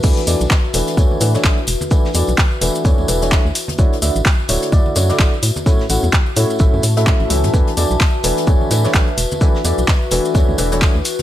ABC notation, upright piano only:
X:1
M:4/4
L:1/16
Q:"Swing 16ths" 1/4=128
K:A
V:1 name="Upright piano"
[E,A,DEFB] z [E,A,DEFd] z3 [E,A,DEFB]2 [E,A,DEFc]2 [E,A,DEFB] [E,A,DEFc]2 z3 | [E,A,DEFB] z [E,A,DEFd] z3 [E,A,DEFB]2 [E,A,DEFc]2 [E,A,DEFB] [E,A,DEFc]2 z3 | [D,A,DEFc] z [D,A,DEFe] z3 [D,A,DEFc]2 [D,A,DEFd]2 [D,A,DEFc] [D,A,DEFd]2 z3 | [A,,A,CEFc] z [A,,A,CEFf] z3 [A,,A,CEFc]2 [A,,A,CEFe]2 z [A,,A,CEFe]3 [E,A,CEFe]2 |
[E,A,DEFB] z [E,A,DEFd] z3 [E,A,DEFB]2 [E,A,DEFc]2 [E,A,DEFB] [E,A,DEFc]2 z3 | [E,A,DEFB] z [E,A,DEFd] z3 [E,A,DEFB]2 [E,A,DEFc]2 [E,A,DEFB] [E,A,DEFc]2 z3 |]